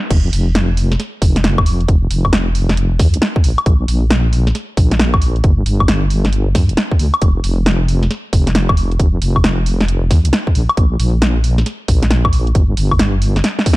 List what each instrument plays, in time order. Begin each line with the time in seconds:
0.11 wobble bass F1, kick, closed hi-hat, crash
0.33 wobble bass F1, open hi-hat
0.55 snare, closed hi-hat
0.77 open hi-hat
0.92 snare, closed hi-hat
1.00 snare, closed hi-hat
1.22 wobble bass F1, kick, open hi-hat
1.36 snare, closed hi-hat
1.44 snare, closed hi-hat
1.58 kick, high woodblock
1.66 open hi-hat
1.81 closed hi-hat
1.88 wobble bass F1, kick, closed hi-hat
2.11 wobble bass F1, open hi-hat
2.25 kick, high woodblock
2.33 snare, closed hi-hat
2.55 open hi-hat
2.69 snare, closed hi-hat
2.77 closed hi-hat
2.99 wobble bass F2, kick, snare, open hi-hat
3.14 wobble bass C2, closed hi-hat
3.22 snare, closed hi-hat
3.36 kick
3.44 wobble bass A#1, open hi-hat
3.58 closed hi-hat, high woodblock
3.66 wobble bass A#1, kick, closed hi-hat
3.88 wobble bass A#1, open hi-hat
4.10 snare, closed hi-hat
4.33 open hi-hat
4.47 snare, closed hi-hat
4.55 snare, closed hi-hat
4.77 wobble bass A#1, kick, open hi-hat
4.91 snare, closed hi-hat
4.99 snare, closed hi-hat
5.14 kick, high woodblock
5.22 open hi-hat
5.36 closed hi-hat
5.44 wobble bass G1, kick, closed hi-hat
5.66 wobble bass G1, open hi-hat
5.80 kick, high woodblock
5.88 snare, closed hi-hat
6.10 open hi-hat
6.25 snare, closed hi-hat
6.33 closed hi-hat
6.55 wobble bass G2, kick, snare, open hi-hat
6.69 wobble bass D1, closed hi-hat
6.77 snare, closed hi-hat
6.91 kick
6.99 wobble bass D2, open hi-hat
7.14 closed hi-hat, high woodblock
7.22 wobble bass F1, kick, closed hi-hat
7.44 wobble bass F1, open hi-hat
7.66 snare, closed hi-hat
7.88 open hi-hat
8.03 snare, closed hi-hat
8.11 snare, closed hi-hat
8.33 wobble bass F1, kick, open hi-hat
8.47 snare, closed hi-hat
8.55 snare, closed hi-hat
8.69 kick, high woodblock
8.77 open hi-hat
8.92 closed hi-hat
9.00 wobble bass F1, kick, closed hi-hat
9.22 wobble bass F1, open hi-hat
9.36 kick, high woodblock
9.44 snare, closed hi-hat
9.66 open hi-hat
9.81 snare, closed hi-hat
9.88 closed hi-hat
10.11 wobble bass F2, kick, snare, open hi-hat
10.25 wobble bass C2, closed hi-hat
10.33 snare, closed hi-hat
10.47 kick
10.55 wobble bass A#1, open hi-hat
10.69 closed hi-hat, high woodblock
10.77 wobble bass A#1, kick, closed hi-hat
10.99 wobble bass A#1, open hi-hat
11.22 snare, closed hi-hat
11.44 open hi-hat
11.58 snare, closed hi-hat
11.66 snare, closed hi-hat
11.88 wobble bass A#1, kick, open hi-hat
12.03 snare, closed hi-hat
12.11 snare, closed hi-hat
12.25 kick, high woodblock
12.33 open hi-hat
12.47 closed hi-hat
12.55 wobble bass G1, kick, closed hi-hat
12.77 wobble bass G1, open hi-hat
12.91 kick, high woodblock
12.99 snare, closed hi-hat
13.22 open hi-hat
13.36 snare, closed hi-hat
13.44 snare, closed hi-hat
13.59 snare
13.66 kick, open hi-hat
13.73 snare